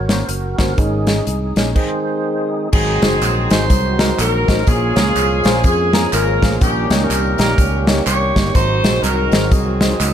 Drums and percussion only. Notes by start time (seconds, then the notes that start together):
0.09 snare, closed hi-hat
0.29 closed hi-hat
0.59 kick, snare, closed hi-hat
0.78 kick, closed hi-hat
1.07 snare, closed hi-hat
1.27 closed hi-hat
1.56 snare, closed hi-hat
1.76 kick, crash
2.73 kick, crash, tambourine
3.02 snare, closed hi-hat, tambourine
3.21 clap, closed hi-hat, tambourine
3.50 snare, closed hi-hat, tambourine
3.70 kick, closed hi-hat, tambourine
3.99 snare, closed hi-hat, tambourine
4.19 clap, closed hi-hat, tambourine
4.48 kick, snare, closed hi-hat, tambourine
4.67 kick, closed hi-hat, tambourine
4.96 snare, closed hi-hat, tambourine
5.16 clap, closed hi-hat, tambourine
5.44 snare, closed hi-hat, tambourine
5.64 kick, closed hi-hat, tambourine
5.93 snare, closed hi-hat, tambourine
6.13 clap, closed hi-hat, tambourine
6.43 kick, snare, closed hi-hat, tambourine
6.61 kick, closed hi-hat, tambourine
6.90 snare, closed hi-hat, tambourine
7.10 clap, closed hi-hat, tambourine
7.38 snare, closed hi-hat, tambourine
7.58 kick, closed hi-hat, tambourine
7.87 snare, closed hi-hat, tambourine
8.07 clap, closed hi-hat, tambourine
8.36 kick, snare, closed hi-hat, tambourine
8.55 kick, closed hi-hat, tambourine
8.84 snare, closed hi-hat, tambourine
9.03 clap, closed hi-hat, tambourine
9.32 snare, closed hi-hat, tambourine
9.51 kick, closed hi-hat, tambourine
9.81 snare, closed hi-hat, tambourine
10.00 clap, closed hi-hat, tambourine